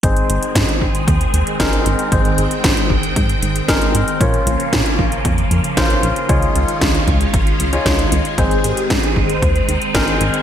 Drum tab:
HH |xxxxxx-xxxxxxxxx|xxxxxx-xxxxxxxxx|xxxxxx-xxxxxxxxx|xxxxxxxxxxxxxxxx|
SD |----o-------o---|----o-------o---|----o-------o---|----o-------o---|
BD |o---o-o-o---o---|o---o-o-o---o---|o---o-o-o---o---|o---o-o-o---o---|

HH |xxxxxx-xxxxxxxxx|
SD |----o-------o---|
BD |o---o-o-o---o---|